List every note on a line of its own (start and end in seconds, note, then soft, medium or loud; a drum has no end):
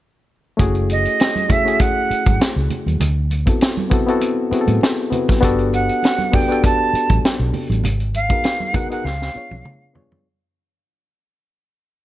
0.57 1.05 F#1 medium
0.57 1.23 A3 loud
0.57 1.23 C#4 medium
0.57 1.24 E4 medium
0.57 1.24 F#4 medium
0.57 1.25 G#4 loud
0.57 kick medium
0.57 closed hi-hat medium
0.57 low conga medium
0.75 closed hi-hat soft
0.89 1.53 D#5 medium
0.89 closed hi-hat medium
0.89 muted conga soft
1.05 closed hi-hat soft
1.20 snare medium
1.20 closed hi-hat medium
1.20 muted conga soft
1.36 closed hi-hat soft
1.36 high conga medium
1.48 1.61 A3 medium
1.48 1.61 C#4 medium
1.48 1.62 E4 medium
1.48 1.62 F#4 medium
1.48 1.62 G#4 medium
1.48 1.82 E5 medium
1.48 kick medium
1.48 closed hi-hat medium
1.48 muted conga soft
1.48 low conga medium
1.64 2.51 A3 medium
1.64 2.51 C#4 medium
1.64 2.51 E4 medium
1.64 2.52 F#4 medium
1.64 2.53 G#4 medium
1.64 closed hi-hat soft
1.80 2.41 F#5 medium
1.80 kick medium
1.80 closed hi-hat medium
2.10 muted fingered electric bass stroke soft
2.10 closed hi-hat medium
2.10 muted conga soft
2.26 2.37 G#1 medium
2.26 kick medium
2.26 closed hi-hat soft
2.26 high conga medium
2.40 muted fingered electric bass stroke soft
2.40 snare loud
2.40 closed hi-hat medium
2.40 muted conga soft
2.56 2.67 C#2 medium
2.70 closed hi-hat medium
2.70 low conga medium
2.86 2.97 D#2 medium
2.86 closed hi-hat soft
2.86 high conga medium
3.00 3.46 D2 medium
3.00 closed hi-hat medium
3.00 muted conga soft
3.00 low conga medium
3.30 closed hi-hat medium
3.30 muted conga soft
3.46 3.79 B3 medium
3.46 3.79 C4 medium
3.46 3.79 E4 medium
3.46 3.80 F#4 medium
3.46 3.80 A4 medium
3.46 kick medium
3.46 closed hi-hat soft
3.61 snare loud
3.61 closed hi-hat medium
3.77 high conga medium
3.90 4.02 B3 medium
3.90 4.03 C4 medium
3.90 4.03 E4 medium
3.90 4.04 F#4 medium
3.90 4.04 A4 medium
3.90 kick medium
3.90 closed hi-hat medium
3.90 low conga medium
4.07 4.39 B3 medium
4.07 4.40 C4 medium
4.07 4.40 E4 medium
4.07 4.40 F#4 medium
4.07 4.41 A4 medium
4.07 closed hi-hat soft
4.21 closed hi-hat medium
4.21 muted conga soft
4.51 4.95 B3 medium
4.51 4.96 C4 medium
4.51 4.96 E4 medium
4.51 4.97 F#4 medium
4.51 4.60 G#4 medium
4.51 muted fingered electric bass stroke soft
4.51 closed hi-hat medium
4.51 muted conga soft
4.61 5.00 A4 medium
4.67 4.78 A2 medium
4.67 closed hi-hat soft
4.67 high conga medium
4.81 snare loud
4.81 closed hi-hat medium
4.81 muted conga soft
5.10 5.33 B3 medium
5.10 5.34 C4 medium
5.10 5.34 E4 medium
5.10 5.35 F#4 medium
5.10 5.35 B4 medium
5.10 closed hi-hat medium
5.10 low conga medium
5.28 kick medium
5.28 snare soft
5.28 closed hi-hat soft
5.28 high conga medium
5.41 5.88 G1 medium
5.41 6.06 B3 loud
5.41 6.07 D4 medium
5.41 6.07 F#4 medium
5.41 6.08 G4 medium
5.41 6.08 A4 loud
5.41 kick loud
5.41 closed hi-hat medium
5.41 low conga medium
5.59 closed hi-hat soft
5.73 6.37 F#5 medium
5.73 closed hi-hat medium
5.73 muted conga soft
5.89 closed hi-hat soft
6.03 snare loud
6.03 closed hi-hat medium
6.03 muted conga soft
6.19 closed hi-hat soft
6.19 high conga medium
6.32 6.44 B3 medium
6.32 6.44 D4 medium
6.32 6.45 F#4 medium
6.32 6.45 G4 medium
6.32 6.46 A4 medium
6.32 6.64 G5 medium
6.32 kick medium
6.32 open hi-hat medium
6.32 low conga medium
6.48 7.34 B3 medium
6.48 7.35 D4 medium
6.48 7.35 F#4 medium
6.48 7.36 G4 medium
6.48 7.36 A4 medium
6.48 closed hi-hat soft
6.64 7.20 A5 medium
6.64 kick medium
6.64 closed hi-hat medium
6.93 muted fingered electric bass stroke soft
6.93 closed hi-hat medium
6.93 muted conga soft
7.09 7.20 A1 medium
7.09 kick medium
7.09 closed hi-hat soft
7.09 high conga medium
7.24 muted fingered electric bass stroke soft
7.24 snare loud
7.24 closed hi-hat medium
7.39 7.50 B1 medium
7.54 open hi-hat soft
7.54 low conga medium
7.70 7.80 A1 medium
7.70 closed hi-hat soft
7.70 high conga medium
7.84 8.30 G#1 medium
7.84 closed hi-hat medium
7.84 muted conga soft
7.84 low conga medium
8.00 closed hi-hat soft
8.14 8.76 F5 medium
8.14 closed hi-hat medium
8.14 muted conga soft
8.29 8.62 B3 medium
8.29 8.62 D#4 medium
8.29 8.63 F#4 medium
8.29 8.63 G#4 medium
8.29 8.64 A#4 medium
8.29 kick medium
8.29 closed hi-hat soft
8.44 snare loud
8.44 closed hi-hat medium
8.44 muted conga soft
8.60 high conga medium
8.73 8.85 B3 medium
8.73 8.86 D#4 medium
8.73 8.86 F#4 medium
8.73 8.87 G#4 medium
8.73 8.87 A#4 medium
8.73 8.90 F#5 medium
8.73 kick medium
8.73 closed hi-hat medium
8.73 low conga medium
8.89 9.04 B3 medium
8.89 9.05 D#4 medium
8.89 9.05 F#4 medium
8.89 9.06 G#4 medium
8.89 9.06 A#4 medium
8.89 9.06 F#5 medium
8.89 closed hi-hat soft
9.04 9.28 C#2 medium
9.04 9.95 F5 medium
9.04 snare soft
9.04 muted conga soft
9.22 snare soft
9.34 9.78 B3 medium
9.34 9.79 D4 soft
9.34 9.79 F4 medium
9.34 9.80 G#4 medium
9.34 9.80 C#5 medium
9.34 muted fingered electric bass stroke soft
9.34 muted conga soft
9.51 9.62 B1 medium
9.51 high tom medium
9.51 high conga medium
9.65 mid tom medium
9.93 10.17 B3 medium
9.93 10.17 D4 medium
9.93 10.18 F4 medium
9.93 10.18 G#4 medium
9.93 10.19 C#5 medium
9.93 floor tom medium
9.93 muted conga soft
9.93 low conga medium
10.12 floor tom medium
10.12 high conga medium